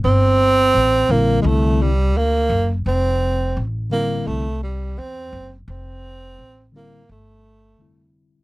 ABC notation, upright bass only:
X:1
M:4/4
L:1/16
Q:"Swing 16ths" 1/4=85
K:F
V:1 name="Upright bass" clef=bass
G,,,4 A,,,2 B,,,2 C,,4 D,,2 _G,,,2 | F,,,4 A,,,4 C,,4 E,,2 _G,,,2 | F,,,4 A,,,4 G,,,4 F,,,3 z |]